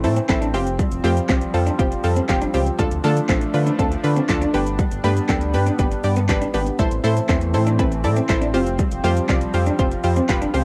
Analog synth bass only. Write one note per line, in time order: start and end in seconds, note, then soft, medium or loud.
0.04 0.20 A2 loud
0.29 0.55 A1 medium
0.54 0.78 F1 loud
0.91 1.00 F1 loud
1.04 1.20 F2 loud
1.29 1.45 C2 medium
1.54 1.70 F2 loud
1.79 1.95 F1 loud
2.04 2.20 F2 loud
2.29 2.45 F1 loud
2.54 2.70 C#2 medium
2.79 2.87 D2 loud
2.92 3.00 D2 medium
3.04 3.20 D3 loud
3.29 3.45 A1 loud
3.54 3.70 D3 loud
3.79 3.95 D2 loud
4.04 4.20 D3 loud
4.29 4.45 D2 medium
4.54 4.78 G1 loud
4.92 5.00 G1 loud
5.04 5.20 G2 loud
5.29 5.56 D2 loud
5.54 5.70 G2 loud
5.79 5.95 G1 loud
6.04 6.31 G2 loud
6.29 6.45 G1 loud
6.54 6.70 G#1 loud
6.79 6.87 A1 loud
6.92 7.00 A1 medium
7.04 7.20 A2 loud
7.29 7.55 E2 loud
7.54 7.81 A2 loud
7.79 8.06 A1 loud
8.04 8.20 A2 loud
8.29 8.55 A1 medium
8.54 8.78 F1 loud
8.91 9.00 F1 loud
9.04 9.20 F2 loud
9.29 9.45 C2 loud
9.54 9.70 F2 loud
9.79 9.95 F1 loud
10.04 10.20 F2 loud
10.29 10.45 F1 medium
10.54 10.64 C#2 medium